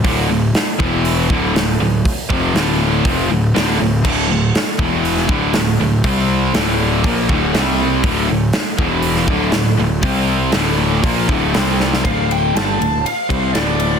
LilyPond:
<<
  \new Staff \with { instrumentName = "Lead electric guitar" } { \time 4/4 \key d \minor \tempo 4 = 120 r1 | r1 | r1 | r1 |
r1 | r1 | f''8 g''8 a''4 f''4 d''4 | }
  \new Staff \with { instrumentName = "Distorted electric guitar" } { \clef bass \time 4/4 \key d \minor <d, a, d>8 <d, a,>8 r8 <e, b, e>4 <d, a, d>8 <d, a,>8 <d, a,>8 | r8 <f, c f>8 <d, a, d>4 <f, c f>8 <d, a,>8 <d, a, d>8 <d, a,>8 | <d, a, d>8 <d, a,>8 r8 <e, b, e>4 <d, a, d>8 <d, a,>8 <d, a,>8 | <c g c'>4 <d, a, d>4 <bes, f bes>8 <d, a, d>8 <c g c'>4 |
<d, a, d>8 <d, a,>8 r8 <e, b, e>4 <d, a, d>8 <d, a,>8 <d, a,>8 | <c g c'>4 <d, a, d>4 <bes, f bes>8 <d, a, d>8 <c g c'>4 | <d, a, d>4 <g, d g>8 <d, a,>8 r8 <c g c'>8 <d, a, d>4 | }
  \new Staff \with { instrumentName = "Distorted electric guitar" } { \clef bass \time 4/4 \key d \minor <d, a, d>8 <d, a,>8 r8 <e, b, e>4 <d, a, d>8 <d, a,>8 <d, a,>8 | r8 <f, c f>8 <d, a, d>4 <f, c f>8 <d, a,>8 <d, a, d>8 <d, a,>8 | <d, a, d>8 <d, a,>8 r8 <e, b, e>4 <d, a, d>8 <d, a,>8 <d, a,>8 | <c g c'>4 <d, a, d>4 <bes, f bes>8 <d, a, d>8 <c g c'>4 |
<d, a, d>8 <d, a,>8 r8 <e, b, e>4 <d, a, d>8 <d, a,>8 <d, a,>8 | <c g c'>4 <d, a, d>4 <bes, f bes>8 <d, a, d>8 <c g c'>4 | r1 | }
  \new Staff \with { instrumentName = "Overdriven electric guitar" } { \clef bass \time 4/4 \key d \minor <d, a, d>8 <d, a,>8 r8 <e, b, e>4 <d, a, d>8 <d, a,>8 <d, a,>8 | r8 <f, c f>8 <d, a, d>4 <f, c f>8 <d, a,>8 <d, a, d>8 <d, a,>8 | <d, a, d>8 <d, a,>8 r8 <e, b, e>4 <d, a, d>8 <d, a,>8 <d, a,>8 | <c g c'>4 <d, a, d>4 <bes, f bes>8 <d, a, d>8 <c g c'>4 |
<d, a, d>8 <d, a,>8 r8 <e, b, e>4 <d, a, d>8 <d, a,>8 <d, a,>8 | <c g c'>4 <d, a, d>4 <bes, f bes>8 <d, a, d>8 <c g c'>4 | <d, a, d>4 <g, d g>8 <d, a,>8 r8 <c g c'>8 <d, a, d>4 | }
  \new Staff \with { instrumentName = "Picked electric bass" } { \clef bass \time 4/4 \key d \minor d,,8 d,,8 r8 e,,4 d,,8 d,,8 d,,8 | r8 f,,8 d,,4 f,,8 d,,8 d,,8 d,,8 | d,,8 d,,8 r8 e,,4 d,,8 d,,8 d,,8 | c,4 d,,4 bes,,8 d,,8 c,4 |
d,,8 d,,8 r8 e,,4 d,,8 d,,8 d,,8 | c,4 d,,4 bes,,8 d,,8 c,4 | d,,4 g,,8 d,,8 r8 c,8 d,,4 | }
  \new DrumStaff \with { instrumentName = "Drums" } \drummode { \time 4/4 <hho bd>4 <hho sn>8 bd8 hho8 bd8 <hho sn>4 | <hho bd>8 bd8 <hho sn>4 <hho bd>4 <hho sn>4 | <cymc bd>4 <hho sn>8 bd8 hho16 sn16 bd8 <hho sn>4 | <hho bd>4 <hho sn>4 <hho bd>8 bd8 <hho sn>4 |
<hho bd>4 <hho sn>8 bd8 hho16 sn16 bd8 <hho sn>4 | <hho bd>4 <hho sn>4 <hho bd>8 bd8 <hho sn>8 sn16 sn16 | <bd cymr>8 cymr8 <cymr sn>8 cymr8 cymr8 <bd cymr>8 <cymr sn>8 cymr8 | }
>>